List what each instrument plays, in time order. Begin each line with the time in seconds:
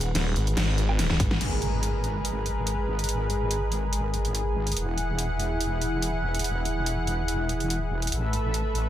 Already playing: wobble bass D#1, analog synth pad G#3 G#4 B4 F#5
0.01 closed hi-hat
0.15 detuned saw bass D#1, snare, closed hi-hat, crash
0.36 wobble bass G#1, closed hi-hat
0.47 closed hi-hat
0.57 detuned saw bass G#1, snare, closed hi-hat, crash
0.78 closed hi-hat
0.89 low woodblock
0.99 snare, closed hi-hat, crash
1.10 kick, snare
1.20 wobble bass G#1, kick, closed hi-hat
1.31 snare
1.41 wobble bass G#1, analog synth pad G#3 G#4 A#4 B4, closed hi-hat, crash, impact
1.62 closed hi-hat
1.83 closed hi-hat
2.04 closed hi-hat
2.25 closed hi-hat
2.46 closed hi-hat
2.67 closed hi-hat
2.99 closed hi-hat
3.04 closed hi-hat
3.09 closed hi-hat
3.30 closed hi-hat
3.51 closed hi-hat
3.72 closed hi-hat
3.93 closed hi-hat
4.14 closed hi-hat
4.25 closed hi-hat
4.35 closed hi-hat
4.67 closed hi-hat
4.72 closed hi-hat
4.77 wobble bass E1, analog synth pad E3 E4 F#5, closed hi-hat
4.98 closed hi-hat
5.19 closed hi-hat
5.40 closed hi-hat
5.61 closed hi-hat
5.81 closed hi-hat
6.02 closed hi-hat
6.35 closed hi-hat
6.39 closed hi-hat
6.44 closed hi-hat
6.65 closed hi-hat
6.86 closed hi-hat
7.07 closed hi-hat
7.28 closed hi-hat
7.49 closed hi-hat
7.60 closed hi-hat
7.70 closed hi-hat
8.02 closed hi-hat
8.07 closed hi-hat
8.12 wobble bass A1, analog synth pad A3 A4 B4 E5, closed hi-hat
8.33 closed hi-hat
8.54 closed hi-hat
8.75 closed hi-hat